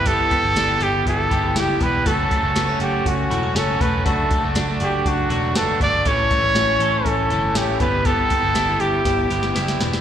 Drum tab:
HH |o-o-o-o-o-o-o-o-|o-o-o-o-o-o-o-o-|o-o-o-o-o-o-o-o-|o-o-o-o-o-o-o-o-|
SD |----o-------o---|----o-------o---|----o-------o---|----o-------o---|
BD |o-o-----o-o---o-|o-o-----o-----o-|o-o-----o-----o-|o-o-----o-----o-|

HH |o-o-o-o-o-o-o-o-|
SD |----o---o--ooooo|
BD |o-o-----o-------|